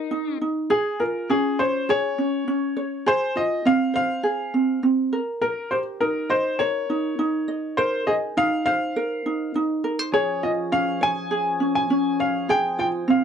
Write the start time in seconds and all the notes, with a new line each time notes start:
Already playing: D#4 G4 A#4 D#5
0.11 D#4
0.41 D#4
0.70 G#4
1.00 F4 A#4
1.30 C#4 G#4
1.59 C5 C#5
1.89 G#4 C#5
2.18 C#4
2.48 C#4
2.77 C#5
3.06 G#4 C5
3.36 F4 D#5
3.65 C4 F5
3.94 C5 F5
4.23 G#4
4.54 C4
4.83 C4
5.13 A#4
5.42 A#4
5.71 G4 C5
6.00 D#4 A#4
6.30 C5 D#5
6.59 A#4 C#5
6.90 D#4
7.19 D#4
7.48 D#5
7.77 A#4 C5
8.07 G#4 D#5
8.37 D#4 F5
8.66 C5 F5
8.96 A#4
9.26 D#4
9.56 D#4
9.84 A#4
9.99 C5
10.12 F3 C#4 G#4 C#5
10.43 F4 D#5
10.72 C#4 F5
11.01 C#5 G#5
11.31 G#4
11.60 C#4
11.75 G#5
11.90 C#4
12.19 C#5 F5
12.48 C4 G#4 G5
12.79 F4 G5
13.08 C4 F5